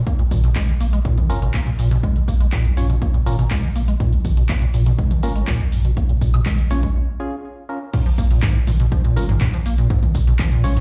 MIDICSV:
0, 0, Header, 1, 5, 480
1, 0, Start_track
1, 0, Tempo, 491803
1, 65, Time_signature, 4, 2, 24, 8
1, 10545, End_track
2, 0, Start_track
2, 0, Title_t, "Synth stab"
2, 0, Program_c, 0, 62
2, 1265, Note_on_c, 0, 61, 93
2, 1265, Note_on_c, 0, 70, 109
2, 1266, Note_on_c, 0, 65, 87
2, 1362, Note_off_c, 0, 61, 0
2, 1362, Note_off_c, 0, 70, 0
2, 1363, Note_off_c, 0, 65, 0
2, 2705, Note_on_c, 0, 61, 87
2, 2705, Note_on_c, 0, 65, 84
2, 2705, Note_on_c, 0, 73, 98
2, 2802, Note_off_c, 0, 65, 0
2, 2802, Note_off_c, 0, 73, 0
2, 2803, Note_off_c, 0, 61, 0
2, 3185, Note_on_c, 0, 61, 93
2, 3185, Note_on_c, 0, 65, 89
2, 3185, Note_on_c, 0, 70, 99
2, 3282, Note_off_c, 0, 65, 0
2, 3282, Note_off_c, 0, 70, 0
2, 3283, Note_off_c, 0, 61, 0
2, 5105, Note_on_c, 0, 65, 90
2, 5106, Note_on_c, 0, 61, 97
2, 5106, Note_on_c, 0, 70, 103
2, 5203, Note_off_c, 0, 61, 0
2, 5203, Note_off_c, 0, 65, 0
2, 5203, Note_off_c, 0, 70, 0
2, 6546, Note_on_c, 0, 61, 93
2, 6546, Note_on_c, 0, 65, 85
2, 6546, Note_on_c, 0, 73, 106
2, 6643, Note_off_c, 0, 61, 0
2, 6643, Note_off_c, 0, 65, 0
2, 6643, Note_off_c, 0, 73, 0
2, 7026, Note_on_c, 0, 61, 85
2, 7026, Note_on_c, 0, 65, 85
2, 7026, Note_on_c, 0, 68, 98
2, 7180, Note_off_c, 0, 61, 0
2, 7180, Note_off_c, 0, 65, 0
2, 7180, Note_off_c, 0, 68, 0
2, 7506, Note_on_c, 0, 61, 82
2, 7506, Note_on_c, 0, 65, 74
2, 7506, Note_on_c, 0, 70, 85
2, 7603, Note_off_c, 0, 61, 0
2, 7603, Note_off_c, 0, 65, 0
2, 7603, Note_off_c, 0, 70, 0
2, 8944, Note_on_c, 0, 61, 96
2, 8944, Note_on_c, 0, 65, 93
2, 8944, Note_on_c, 0, 70, 110
2, 9042, Note_off_c, 0, 61, 0
2, 9042, Note_off_c, 0, 65, 0
2, 9042, Note_off_c, 0, 70, 0
2, 10384, Note_on_c, 0, 61, 94
2, 10384, Note_on_c, 0, 65, 87
2, 10384, Note_on_c, 0, 73, 104
2, 10482, Note_off_c, 0, 61, 0
2, 10482, Note_off_c, 0, 65, 0
2, 10482, Note_off_c, 0, 73, 0
2, 10545, End_track
3, 0, Start_track
3, 0, Title_t, "Acid bass"
3, 0, Program_c, 1, 38
3, 67, Note_on_c, 1, 58, 83
3, 133, Note_off_c, 1, 58, 0
3, 189, Note_on_c, 1, 46, 74
3, 227, Note_off_c, 1, 46, 0
3, 307, Note_on_c, 1, 46, 77
3, 407, Note_off_c, 1, 46, 0
3, 428, Note_on_c, 1, 47, 96
3, 493, Note_off_c, 1, 47, 0
3, 547, Note_on_c, 1, 56, 80
3, 667, Note_on_c, 1, 46, 78
3, 682, Note_off_c, 1, 56, 0
3, 707, Note_off_c, 1, 46, 0
3, 786, Note_on_c, 1, 58, 74
3, 853, Note_off_c, 1, 58, 0
3, 907, Note_on_c, 1, 56, 76
3, 972, Note_off_c, 1, 56, 0
3, 1026, Note_on_c, 1, 46, 75
3, 1147, Note_on_c, 1, 34, 72
3, 1161, Note_off_c, 1, 46, 0
3, 1265, Note_on_c, 1, 46, 79
3, 1279, Note_off_c, 1, 34, 0
3, 1332, Note_off_c, 1, 46, 0
3, 1385, Note_on_c, 1, 47, 79
3, 1452, Note_off_c, 1, 47, 0
3, 1504, Note_on_c, 1, 58, 80
3, 1572, Note_off_c, 1, 58, 0
3, 1627, Note_on_c, 1, 46, 77
3, 1666, Note_off_c, 1, 46, 0
3, 1746, Note_on_c, 1, 46, 72
3, 1846, Note_off_c, 1, 46, 0
3, 1867, Note_on_c, 1, 47, 96
3, 1932, Note_off_c, 1, 47, 0
3, 1985, Note_on_c, 1, 56, 83
3, 2107, Note_on_c, 1, 46, 76
3, 2121, Note_off_c, 1, 56, 0
3, 2146, Note_off_c, 1, 46, 0
3, 2224, Note_on_c, 1, 58, 76
3, 2292, Note_off_c, 1, 58, 0
3, 2346, Note_on_c, 1, 56, 72
3, 2412, Note_off_c, 1, 56, 0
3, 2464, Note_on_c, 1, 46, 79
3, 2586, Note_on_c, 1, 34, 78
3, 2600, Note_off_c, 1, 46, 0
3, 2704, Note_on_c, 1, 46, 72
3, 2719, Note_off_c, 1, 34, 0
3, 2772, Note_off_c, 1, 46, 0
3, 2826, Note_on_c, 1, 47, 71
3, 2892, Note_off_c, 1, 47, 0
3, 2944, Note_on_c, 1, 58, 80
3, 3012, Note_off_c, 1, 58, 0
3, 3067, Note_on_c, 1, 46, 77
3, 3106, Note_off_c, 1, 46, 0
3, 3184, Note_on_c, 1, 46, 75
3, 3285, Note_off_c, 1, 46, 0
3, 3306, Note_on_c, 1, 47, 103
3, 3372, Note_off_c, 1, 47, 0
3, 3425, Note_on_c, 1, 56, 84
3, 3547, Note_on_c, 1, 46, 75
3, 3561, Note_off_c, 1, 56, 0
3, 3586, Note_off_c, 1, 46, 0
3, 3666, Note_on_c, 1, 58, 78
3, 3733, Note_off_c, 1, 58, 0
3, 3788, Note_on_c, 1, 56, 80
3, 3853, Note_off_c, 1, 56, 0
3, 3906, Note_on_c, 1, 46, 86
3, 4028, Note_on_c, 1, 34, 76
3, 4042, Note_off_c, 1, 46, 0
3, 4146, Note_on_c, 1, 46, 73
3, 4161, Note_off_c, 1, 34, 0
3, 4213, Note_off_c, 1, 46, 0
3, 4267, Note_on_c, 1, 47, 70
3, 4333, Note_off_c, 1, 47, 0
3, 4387, Note_on_c, 1, 58, 84
3, 4453, Note_off_c, 1, 58, 0
3, 4508, Note_on_c, 1, 46, 76
3, 4547, Note_off_c, 1, 46, 0
3, 4626, Note_on_c, 1, 46, 74
3, 4726, Note_off_c, 1, 46, 0
3, 4747, Note_on_c, 1, 47, 105
3, 4813, Note_off_c, 1, 47, 0
3, 4866, Note_on_c, 1, 56, 78
3, 4988, Note_on_c, 1, 46, 76
3, 5002, Note_off_c, 1, 56, 0
3, 5027, Note_off_c, 1, 46, 0
3, 5107, Note_on_c, 1, 58, 76
3, 5173, Note_off_c, 1, 58, 0
3, 5229, Note_on_c, 1, 56, 79
3, 5293, Note_off_c, 1, 56, 0
3, 5347, Note_on_c, 1, 46, 84
3, 5468, Note_on_c, 1, 34, 77
3, 5483, Note_off_c, 1, 46, 0
3, 5587, Note_on_c, 1, 46, 80
3, 5602, Note_off_c, 1, 34, 0
3, 5653, Note_off_c, 1, 46, 0
3, 5709, Note_on_c, 1, 47, 79
3, 5774, Note_off_c, 1, 47, 0
3, 5827, Note_on_c, 1, 58, 83
3, 5893, Note_off_c, 1, 58, 0
3, 5949, Note_on_c, 1, 46, 74
3, 5987, Note_off_c, 1, 46, 0
3, 6068, Note_on_c, 1, 46, 76
3, 6167, Note_off_c, 1, 46, 0
3, 6189, Note_on_c, 1, 47, 99
3, 6254, Note_off_c, 1, 47, 0
3, 6308, Note_on_c, 1, 56, 86
3, 6430, Note_on_c, 1, 46, 80
3, 6444, Note_off_c, 1, 56, 0
3, 6467, Note_off_c, 1, 46, 0
3, 6547, Note_on_c, 1, 58, 78
3, 6613, Note_off_c, 1, 58, 0
3, 6669, Note_on_c, 1, 56, 75
3, 6733, Note_off_c, 1, 56, 0
3, 7746, Note_on_c, 1, 46, 90
3, 7813, Note_off_c, 1, 46, 0
3, 7867, Note_on_c, 1, 53, 81
3, 7906, Note_off_c, 1, 53, 0
3, 7984, Note_on_c, 1, 58, 75
3, 8085, Note_off_c, 1, 58, 0
3, 8105, Note_on_c, 1, 46, 71
3, 8204, Note_off_c, 1, 46, 0
3, 8225, Note_on_c, 1, 44, 81
3, 8347, Note_on_c, 1, 46, 80
3, 8361, Note_off_c, 1, 44, 0
3, 8386, Note_off_c, 1, 46, 0
3, 8465, Note_on_c, 1, 46, 79
3, 8505, Note_off_c, 1, 46, 0
3, 8587, Note_on_c, 1, 47, 74
3, 8652, Note_off_c, 1, 47, 0
3, 8705, Note_on_c, 1, 53, 79
3, 8806, Note_off_c, 1, 53, 0
3, 8826, Note_on_c, 1, 46, 77
3, 8945, Note_on_c, 1, 58, 80
3, 8960, Note_off_c, 1, 46, 0
3, 9012, Note_off_c, 1, 58, 0
3, 9067, Note_on_c, 1, 44, 110
3, 9132, Note_off_c, 1, 44, 0
3, 9185, Note_on_c, 1, 46, 82
3, 9252, Note_off_c, 1, 46, 0
3, 9308, Note_on_c, 1, 53, 77
3, 9346, Note_off_c, 1, 53, 0
3, 9426, Note_on_c, 1, 58, 79
3, 9526, Note_off_c, 1, 58, 0
3, 9548, Note_on_c, 1, 46, 79
3, 9645, Note_off_c, 1, 46, 0
3, 9665, Note_on_c, 1, 44, 85
3, 9786, Note_on_c, 1, 46, 79
3, 9801, Note_off_c, 1, 44, 0
3, 9826, Note_off_c, 1, 46, 0
3, 9905, Note_on_c, 1, 46, 78
3, 9945, Note_off_c, 1, 46, 0
3, 10026, Note_on_c, 1, 47, 78
3, 10092, Note_off_c, 1, 47, 0
3, 10145, Note_on_c, 1, 53, 88
3, 10246, Note_off_c, 1, 53, 0
3, 10266, Note_on_c, 1, 46, 85
3, 10385, Note_on_c, 1, 58, 79
3, 10399, Note_off_c, 1, 46, 0
3, 10452, Note_off_c, 1, 58, 0
3, 10507, Note_on_c, 1, 44, 102
3, 10545, Note_off_c, 1, 44, 0
3, 10545, End_track
4, 0, Start_track
4, 0, Title_t, "Sub bass"
4, 0, Program_c, 2, 38
4, 305, Note_on_c, 2, 34, 99
4, 500, Note_off_c, 2, 34, 0
4, 785, Note_on_c, 2, 34, 79
4, 980, Note_off_c, 2, 34, 0
4, 1265, Note_on_c, 2, 32, 96
4, 1460, Note_off_c, 2, 32, 0
4, 1505, Note_on_c, 2, 34, 100
4, 1699, Note_off_c, 2, 34, 0
4, 1745, Note_on_c, 2, 34, 79
4, 1940, Note_off_c, 2, 34, 0
4, 2225, Note_on_c, 2, 34, 97
4, 2419, Note_off_c, 2, 34, 0
4, 2704, Note_on_c, 2, 34, 89
4, 2899, Note_off_c, 2, 34, 0
4, 3184, Note_on_c, 2, 32, 92
4, 3379, Note_off_c, 2, 32, 0
4, 3425, Note_on_c, 2, 34, 101
4, 3620, Note_off_c, 2, 34, 0
4, 3664, Note_on_c, 2, 34, 78
4, 3859, Note_off_c, 2, 34, 0
4, 4145, Note_on_c, 2, 34, 99
4, 4339, Note_off_c, 2, 34, 0
4, 4626, Note_on_c, 2, 34, 82
4, 4820, Note_off_c, 2, 34, 0
4, 5106, Note_on_c, 2, 32, 96
4, 5300, Note_off_c, 2, 32, 0
4, 5346, Note_on_c, 2, 34, 97
4, 5540, Note_off_c, 2, 34, 0
4, 5586, Note_on_c, 2, 34, 84
4, 5780, Note_off_c, 2, 34, 0
4, 6065, Note_on_c, 2, 34, 97
4, 6259, Note_off_c, 2, 34, 0
4, 6546, Note_on_c, 2, 34, 85
4, 6740, Note_off_c, 2, 34, 0
4, 7985, Note_on_c, 2, 34, 102
4, 8180, Note_off_c, 2, 34, 0
4, 8466, Note_on_c, 2, 34, 84
4, 8660, Note_off_c, 2, 34, 0
4, 8945, Note_on_c, 2, 32, 99
4, 9139, Note_off_c, 2, 32, 0
4, 9185, Note_on_c, 2, 34, 108
4, 9379, Note_off_c, 2, 34, 0
4, 9425, Note_on_c, 2, 34, 80
4, 9619, Note_off_c, 2, 34, 0
4, 9904, Note_on_c, 2, 34, 106
4, 10099, Note_off_c, 2, 34, 0
4, 10385, Note_on_c, 2, 34, 88
4, 10545, Note_off_c, 2, 34, 0
4, 10545, End_track
5, 0, Start_track
5, 0, Title_t, "Drums"
5, 65, Note_on_c, 9, 36, 116
5, 65, Note_on_c, 9, 42, 48
5, 163, Note_off_c, 9, 36, 0
5, 163, Note_off_c, 9, 42, 0
5, 187, Note_on_c, 9, 42, 25
5, 285, Note_off_c, 9, 42, 0
5, 305, Note_on_c, 9, 36, 80
5, 306, Note_on_c, 9, 46, 101
5, 306, Note_on_c, 9, 47, 74
5, 403, Note_off_c, 9, 36, 0
5, 403, Note_off_c, 9, 46, 0
5, 403, Note_off_c, 9, 47, 0
5, 427, Note_on_c, 9, 42, 46
5, 525, Note_off_c, 9, 42, 0
5, 542, Note_on_c, 9, 39, 111
5, 545, Note_on_c, 9, 36, 109
5, 546, Note_on_c, 9, 42, 53
5, 640, Note_off_c, 9, 39, 0
5, 643, Note_off_c, 9, 36, 0
5, 643, Note_off_c, 9, 42, 0
5, 668, Note_on_c, 9, 42, 23
5, 765, Note_off_c, 9, 42, 0
5, 786, Note_on_c, 9, 46, 90
5, 883, Note_off_c, 9, 46, 0
5, 908, Note_on_c, 9, 42, 48
5, 1005, Note_off_c, 9, 42, 0
5, 1025, Note_on_c, 9, 36, 111
5, 1026, Note_on_c, 9, 42, 49
5, 1122, Note_off_c, 9, 36, 0
5, 1124, Note_off_c, 9, 42, 0
5, 1148, Note_on_c, 9, 42, 26
5, 1148, Note_on_c, 9, 47, 91
5, 1246, Note_off_c, 9, 42, 0
5, 1246, Note_off_c, 9, 47, 0
5, 1266, Note_on_c, 9, 46, 106
5, 1364, Note_off_c, 9, 46, 0
5, 1388, Note_on_c, 9, 42, 51
5, 1485, Note_off_c, 9, 42, 0
5, 1502, Note_on_c, 9, 39, 109
5, 1505, Note_on_c, 9, 36, 113
5, 1506, Note_on_c, 9, 42, 50
5, 1600, Note_off_c, 9, 39, 0
5, 1603, Note_off_c, 9, 36, 0
5, 1603, Note_off_c, 9, 42, 0
5, 1628, Note_on_c, 9, 42, 25
5, 1725, Note_off_c, 9, 42, 0
5, 1745, Note_on_c, 9, 46, 93
5, 1843, Note_off_c, 9, 46, 0
5, 1867, Note_on_c, 9, 42, 49
5, 1965, Note_off_c, 9, 42, 0
5, 1985, Note_on_c, 9, 36, 110
5, 1985, Note_on_c, 9, 42, 49
5, 2083, Note_off_c, 9, 36, 0
5, 2083, Note_off_c, 9, 42, 0
5, 2108, Note_on_c, 9, 42, 25
5, 2205, Note_off_c, 9, 42, 0
5, 2225, Note_on_c, 9, 36, 76
5, 2225, Note_on_c, 9, 46, 94
5, 2323, Note_off_c, 9, 36, 0
5, 2323, Note_off_c, 9, 46, 0
5, 2347, Note_on_c, 9, 42, 52
5, 2445, Note_off_c, 9, 42, 0
5, 2462, Note_on_c, 9, 39, 110
5, 2465, Note_on_c, 9, 36, 100
5, 2466, Note_on_c, 9, 42, 52
5, 2560, Note_off_c, 9, 39, 0
5, 2563, Note_off_c, 9, 36, 0
5, 2563, Note_off_c, 9, 42, 0
5, 2587, Note_on_c, 9, 42, 23
5, 2684, Note_off_c, 9, 42, 0
5, 2704, Note_on_c, 9, 46, 87
5, 2802, Note_off_c, 9, 46, 0
5, 2827, Note_on_c, 9, 42, 51
5, 2924, Note_off_c, 9, 42, 0
5, 2945, Note_on_c, 9, 36, 102
5, 2945, Note_on_c, 9, 42, 50
5, 3043, Note_off_c, 9, 36, 0
5, 3043, Note_off_c, 9, 42, 0
5, 3067, Note_on_c, 9, 42, 25
5, 3165, Note_off_c, 9, 42, 0
5, 3185, Note_on_c, 9, 46, 104
5, 3283, Note_off_c, 9, 46, 0
5, 3307, Note_on_c, 9, 42, 51
5, 3404, Note_off_c, 9, 42, 0
5, 3422, Note_on_c, 9, 39, 114
5, 3425, Note_on_c, 9, 36, 116
5, 3425, Note_on_c, 9, 42, 49
5, 3520, Note_off_c, 9, 39, 0
5, 3523, Note_off_c, 9, 36, 0
5, 3523, Note_off_c, 9, 42, 0
5, 3547, Note_on_c, 9, 42, 25
5, 3645, Note_off_c, 9, 42, 0
5, 3665, Note_on_c, 9, 46, 89
5, 3763, Note_off_c, 9, 46, 0
5, 3786, Note_on_c, 9, 42, 52
5, 3884, Note_off_c, 9, 42, 0
5, 3905, Note_on_c, 9, 36, 107
5, 3905, Note_on_c, 9, 42, 54
5, 4003, Note_off_c, 9, 36, 0
5, 4003, Note_off_c, 9, 42, 0
5, 4028, Note_on_c, 9, 42, 27
5, 4125, Note_off_c, 9, 42, 0
5, 4145, Note_on_c, 9, 36, 73
5, 4145, Note_on_c, 9, 46, 89
5, 4145, Note_on_c, 9, 47, 72
5, 4243, Note_off_c, 9, 36, 0
5, 4243, Note_off_c, 9, 46, 0
5, 4243, Note_off_c, 9, 47, 0
5, 4267, Note_on_c, 9, 42, 49
5, 4365, Note_off_c, 9, 42, 0
5, 4382, Note_on_c, 9, 39, 119
5, 4385, Note_on_c, 9, 36, 101
5, 4385, Note_on_c, 9, 42, 55
5, 4479, Note_off_c, 9, 39, 0
5, 4483, Note_off_c, 9, 36, 0
5, 4483, Note_off_c, 9, 42, 0
5, 4507, Note_on_c, 9, 42, 25
5, 4604, Note_off_c, 9, 42, 0
5, 4625, Note_on_c, 9, 46, 87
5, 4723, Note_off_c, 9, 46, 0
5, 4746, Note_on_c, 9, 42, 54
5, 4844, Note_off_c, 9, 42, 0
5, 4865, Note_on_c, 9, 42, 54
5, 4866, Note_on_c, 9, 36, 108
5, 4963, Note_off_c, 9, 36, 0
5, 4963, Note_off_c, 9, 42, 0
5, 4987, Note_on_c, 9, 42, 28
5, 4987, Note_on_c, 9, 47, 84
5, 5084, Note_off_c, 9, 42, 0
5, 5084, Note_off_c, 9, 47, 0
5, 5105, Note_on_c, 9, 46, 101
5, 5202, Note_off_c, 9, 46, 0
5, 5227, Note_on_c, 9, 42, 51
5, 5325, Note_off_c, 9, 42, 0
5, 5342, Note_on_c, 9, 39, 119
5, 5346, Note_on_c, 9, 36, 112
5, 5346, Note_on_c, 9, 42, 52
5, 5440, Note_off_c, 9, 39, 0
5, 5443, Note_off_c, 9, 36, 0
5, 5443, Note_off_c, 9, 42, 0
5, 5467, Note_on_c, 9, 42, 27
5, 5565, Note_off_c, 9, 42, 0
5, 5585, Note_on_c, 9, 46, 87
5, 5682, Note_off_c, 9, 46, 0
5, 5707, Note_on_c, 9, 42, 51
5, 5804, Note_off_c, 9, 42, 0
5, 5826, Note_on_c, 9, 36, 112
5, 5826, Note_on_c, 9, 42, 53
5, 5923, Note_off_c, 9, 36, 0
5, 5923, Note_off_c, 9, 42, 0
5, 5947, Note_on_c, 9, 42, 28
5, 6045, Note_off_c, 9, 42, 0
5, 6065, Note_on_c, 9, 36, 76
5, 6066, Note_on_c, 9, 46, 91
5, 6163, Note_off_c, 9, 36, 0
5, 6163, Note_off_c, 9, 46, 0
5, 6187, Note_on_c, 9, 42, 54
5, 6187, Note_on_c, 9, 76, 80
5, 6285, Note_off_c, 9, 42, 0
5, 6285, Note_off_c, 9, 76, 0
5, 6302, Note_on_c, 9, 39, 118
5, 6305, Note_on_c, 9, 36, 103
5, 6305, Note_on_c, 9, 42, 57
5, 6305, Note_on_c, 9, 47, 78
5, 6400, Note_off_c, 9, 39, 0
5, 6403, Note_off_c, 9, 36, 0
5, 6403, Note_off_c, 9, 42, 0
5, 6403, Note_off_c, 9, 47, 0
5, 6426, Note_on_c, 9, 42, 25
5, 6524, Note_off_c, 9, 42, 0
5, 6545, Note_on_c, 9, 46, 87
5, 6642, Note_off_c, 9, 46, 0
5, 6666, Note_on_c, 9, 42, 56
5, 6667, Note_on_c, 9, 36, 62
5, 6764, Note_off_c, 9, 36, 0
5, 6764, Note_off_c, 9, 42, 0
5, 7743, Note_on_c, 9, 82, 56
5, 7745, Note_on_c, 9, 36, 117
5, 7745, Note_on_c, 9, 42, 56
5, 7745, Note_on_c, 9, 49, 103
5, 7840, Note_off_c, 9, 82, 0
5, 7843, Note_off_c, 9, 36, 0
5, 7843, Note_off_c, 9, 42, 0
5, 7843, Note_off_c, 9, 49, 0
5, 7867, Note_on_c, 9, 42, 28
5, 7871, Note_on_c, 9, 82, 27
5, 7964, Note_off_c, 9, 42, 0
5, 7969, Note_off_c, 9, 82, 0
5, 7978, Note_on_c, 9, 82, 91
5, 7985, Note_on_c, 9, 36, 82
5, 7985, Note_on_c, 9, 46, 97
5, 8075, Note_off_c, 9, 82, 0
5, 8083, Note_off_c, 9, 36, 0
5, 8083, Note_off_c, 9, 46, 0
5, 8107, Note_on_c, 9, 42, 53
5, 8109, Note_on_c, 9, 82, 37
5, 8204, Note_off_c, 9, 42, 0
5, 8207, Note_off_c, 9, 82, 0
5, 8217, Note_on_c, 9, 82, 53
5, 8222, Note_on_c, 9, 39, 127
5, 8225, Note_on_c, 9, 36, 116
5, 8225, Note_on_c, 9, 42, 58
5, 8225, Note_on_c, 9, 47, 94
5, 8315, Note_off_c, 9, 82, 0
5, 8320, Note_off_c, 9, 39, 0
5, 8323, Note_off_c, 9, 36, 0
5, 8323, Note_off_c, 9, 42, 0
5, 8323, Note_off_c, 9, 47, 0
5, 8347, Note_on_c, 9, 82, 24
5, 8348, Note_on_c, 9, 42, 27
5, 8445, Note_off_c, 9, 42, 0
5, 8445, Note_off_c, 9, 82, 0
5, 8465, Note_on_c, 9, 46, 94
5, 8465, Note_on_c, 9, 47, 82
5, 8466, Note_on_c, 9, 82, 93
5, 8563, Note_off_c, 9, 46, 0
5, 8563, Note_off_c, 9, 47, 0
5, 8564, Note_off_c, 9, 82, 0
5, 8586, Note_on_c, 9, 42, 54
5, 8593, Note_on_c, 9, 82, 35
5, 8684, Note_off_c, 9, 42, 0
5, 8690, Note_off_c, 9, 82, 0
5, 8698, Note_on_c, 9, 82, 51
5, 8704, Note_on_c, 9, 36, 116
5, 8705, Note_on_c, 9, 42, 59
5, 8795, Note_off_c, 9, 82, 0
5, 8802, Note_off_c, 9, 36, 0
5, 8803, Note_off_c, 9, 42, 0
5, 8822, Note_on_c, 9, 82, 30
5, 8827, Note_on_c, 9, 42, 27
5, 8919, Note_off_c, 9, 82, 0
5, 8925, Note_off_c, 9, 42, 0
5, 8945, Note_on_c, 9, 46, 112
5, 8949, Note_on_c, 9, 82, 92
5, 9043, Note_off_c, 9, 46, 0
5, 9047, Note_off_c, 9, 82, 0
5, 9067, Note_on_c, 9, 42, 54
5, 9067, Note_on_c, 9, 47, 93
5, 9067, Note_on_c, 9, 82, 41
5, 9164, Note_off_c, 9, 42, 0
5, 9164, Note_off_c, 9, 47, 0
5, 9165, Note_off_c, 9, 82, 0
5, 9182, Note_on_c, 9, 39, 120
5, 9182, Note_on_c, 9, 82, 56
5, 9184, Note_on_c, 9, 36, 124
5, 9185, Note_on_c, 9, 42, 55
5, 9279, Note_off_c, 9, 39, 0
5, 9279, Note_off_c, 9, 82, 0
5, 9282, Note_off_c, 9, 36, 0
5, 9283, Note_off_c, 9, 42, 0
5, 9306, Note_on_c, 9, 42, 29
5, 9309, Note_on_c, 9, 82, 29
5, 9404, Note_off_c, 9, 42, 0
5, 9407, Note_off_c, 9, 82, 0
5, 9423, Note_on_c, 9, 82, 90
5, 9425, Note_on_c, 9, 46, 96
5, 9521, Note_off_c, 9, 82, 0
5, 9523, Note_off_c, 9, 46, 0
5, 9545, Note_on_c, 9, 82, 44
5, 9546, Note_on_c, 9, 42, 56
5, 9643, Note_off_c, 9, 82, 0
5, 9644, Note_off_c, 9, 42, 0
5, 9664, Note_on_c, 9, 36, 126
5, 9665, Note_on_c, 9, 42, 51
5, 9665, Note_on_c, 9, 82, 51
5, 9762, Note_off_c, 9, 36, 0
5, 9763, Note_off_c, 9, 42, 0
5, 9763, Note_off_c, 9, 82, 0
5, 9787, Note_on_c, 9, 42, 26
5, 9787, Note_on_c, 9, 47, 88
5, 9787, Note_on_c, 9, 82, 28
5, 9884, Note_off_c, 9, 42, 0
5, 9884, Note_off_c, 9, 47, 0
5, 9884, Note_off_c, 9, 82, 0
5, 9904, Note_on_c, 9, 36, 81
5, 9904, Note_on_c, 9, 46, 104
5, 9904, Note_on_c, 9, 82, 93
5, 10001, Note_off_c, 9, 82, 0
5, 10002, Note_off_c, 9, 36, 0
5, 10002, Note_off_c, 9, 46, 0
5, 10026, Note_on_c, 9, 42, 52
5, 10029, Note_on_c, 9, 82, 37
5, 10124, Note_off_c, 9, 42, 0
5, 10127, Note_off_c, 9, 82, 0
5, 10136, Note_on_c, 9, 82, 50
5, 10141, Note_on_c, 9, 39, 125
5, 10144, Note_on_c, 9, 36, 116
5, 10145, Note_on_c, 9, 42, 58
5, 10145, Note_on_c, 9, 47, 101
5, 10234, Note_off_c, 9, 82, 0
5, 10239, Note_off_c, 9, 39, 0
5, 10242, Note_off_c, 9, 36, 0
5, 10242, Note_off_c, 9, 42, 0
5, 10242, Note_off_c, 9, 47, 0
5, 10266, Note_on_c, 9, 42, 26
5, 10267, Note_on_c, 9, 82, 26
5, 10364, Note_off_c, 9, 42, 0
5, 10365, Note_off_c, 9, 82, 0
5, 10384, Note_on_c, 9, 46, 95
5, 10384, Note_on_c, 9, 82, 95
5, 10481, Note_off_c, 9, 82, 0
5, 10482, Note_off_c, 9, 46, 0
5, 10508, Note_on_c, 9, 42, 54
5, 10510, Note_on_c, 9, 82, 40
5, 10545, Note_off_c, 9, 42, 0
5, 10545, Note_off_c, 9, 82, 0
5, 10545, End_track
0, 0, End_of_file